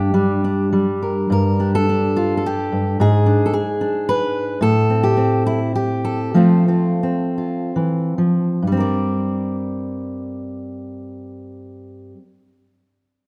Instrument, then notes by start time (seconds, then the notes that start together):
steel-string acoustic guitar
Already playing: G2 D4 G4
0.14 G3 D4
0.44 D4
0.73 G3
1.02 A#4
1.30 G2 A#4
1.60 D4 G4
1.75 A4
1.89 D4
2.17 F4
2.37 A4
2.46 G4
2.72 G2
3.00 G#2 G#4
3.26 D4
3.46 A4
3.54 G#4
3.81 D4
4.09 B4
4.61 A2 A4
4.90 C4
5.03 G4
5.17 C4
5.46 E4
5.75 G4
6.05 A4
6.34 F3 A3 C4 F4
6.68 C4 F4
7.03 C4
7.38 F4
7.76 E3
8.18 F3
8.62 G2
8.67 G3
8.72 C4
8.77 A#4 D5